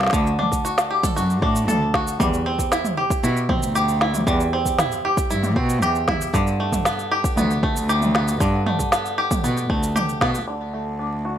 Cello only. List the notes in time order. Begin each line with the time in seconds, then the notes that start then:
0.13 D2
1.17 F#2
1.42 A2
1.68 D2
2.20 E2
3.23 B2
3.62 D2
4.27 E2
5.31 G2
5.56 B2
5.82 E2
6.34 G2
7.37 D2
7.76 D2
8.40 G2
9.44 B2
9.70 D2
10.21 B2
10.47 D2